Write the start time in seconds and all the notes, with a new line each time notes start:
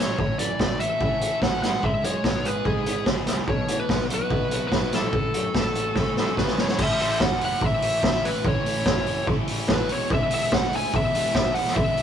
Already playing: C#4 F#4 C#5
0.00 F#3
0.18 A1 A2 C#5, kick
0.38 F#2 E3 D5, closed hi-hat
0.59 A1 A3, kick, snare
0.79 A1 A4 E5, closed hi-hat
1.00 A2 C#4, kick
1.20 A1 A4, closed hi-hat
1.41 A1 C#4 F#5, kick, snare
1.61 G#1 G#3 F#5, snare, closed hi-hat
1.82 G#1 G#3 E5, kick
2.02 F#2 G#3 C#5, closed hi-hat
2.23 G#1 B3, kick, snare
2.44 G#1 G#4 B4, closed hi-hat
2.65 G#2 E4 G#4, kick
2.85 G#1 G#4, closed hi-hat
3.06 G#1 E4, kick, snare
3.26 C#2 G#3, snare, closed hi-hat
3.47 B1 B2 C#5, kick
3.67 A2 E3, closed hi-hat
3.80 B4
3.89 B1 B3, kick, snare
4.08 B1 F#4, closed hi-hat
4.14 B4
4.30 B2 E4, kick
4.49 B1 F#4, closed hi-hat
4.67 E4 B4
4.72 B1, kick, snare
4.92 B1 E3 A4, snare, closed hi-hat
5.12 A1 A2, kick
5.34 F#2 F#3, closed hi-hat
5.54 A1 A3, kick, snare
5.74 A1 F#4, closed hi-hat
5.95 A2 C#4, kick, snare
6.16 A1 F#4, snare
6.37 A1 C#4 B4, kick, snare
6.48 snare
6.57 A1 F#3 C#5, snare
6.68 snare
6.78 A1 A2 E3 A3 C#4 E4, kick, crash
6.83 E5
6.99 A1 A2 E3 A3 C#4 E4 E5, open hi-hat
7.19 F#1 A2 E3 A3 C#4 E4 F#5, kick, snare
7.40 A2 E3 A3 C#4 E4, open hi-hat
7.45 F#5
7.61 A1 A2 E3 A3 C#4 E4 E5, kick
7.82 A1 A2 E3 A3 C#4 E4, open hi-hat
8.03 A1 A2 E3 A3 C#4, kick, snare
8.07 E4
8.14 snare
8.24 A1 A2 E3 A3 C#4 E4 B4, open hi-hat
8.44 A1 A2 E3 A3 C#4 E4 C#5, kick
8.65 A1 A2 E3 A3 C#4, open hi-hat
8.69 E4
8.85 F#1 A2 E3, kick, snare
8.90 A3 C#4 E4
9.07 A2 E3 A3 C#4 E4, open hi-hat
9.27 A1 A2 E3 A3 C#4 E4, kick
9.47 A1 A2 E3 A3 C#4 E4, open hi-hat
9.68 A1 A2 E3 A3 C#4 E4, kick, snare
9.73 B4
9.89 E1 E2 B2 E3 G#3 C#5, open hi-hat
9.94 B3 E4
10.10 E1 E2 B2 E3 G#3 B3 E5, kick
10.14 E4
10.31 E1 E2 B2 E3 G#3 B3 E4 E5, open hi-hat
10.52 D2 E2 B2 E3 G#3 B3 E4 F#5, kick, snare
10.73 E2 B2 E3 G#3 B3 E4 G#5, open hi-hat
10.93 E1 E2 B2 E3 G#3 B3 E4 E5, kick
11.15 E1 E2 B2 E3 G#3 B3 E4, open hi-hat
11.34 E1 E2 B2 E3 G#3 B3 E4, kick, snare
11.54 E1 E2 B2 F#5, open hi-hat
11.58 E3 G#3 B3 E4
11.67 snare
11.75 E1 E2 E5, kick
11.80 B2 E3 G#3 B3 E4
11.97 E1 E2 B2, open hi-hat